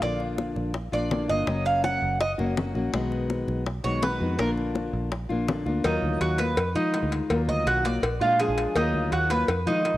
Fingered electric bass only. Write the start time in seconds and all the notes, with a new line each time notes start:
0.01 A#1
0.56 A#1
0.92 A#1
1.29 G1
1.47 F#1
2.02 F#1
2.39 F#1
2.75 A#1
2.93 B1
3.48 B1
3.84 B1
4.21 F2
4.39 A#1
4.93 A#1
5.30 A#1
5.66 D2
5.84 D#2
6.02 D2
6.21 D#2
6.57 F2
6.75 F3
7.03 D2
7.30 D#2
7.48 D2
7.66 B1
8.02 A#1
8.21 A#2
8.48 A#1
8.75 D#2
8.94 D2
9.12 D#2
9.48 F2
9.66 F3
9.94 A#1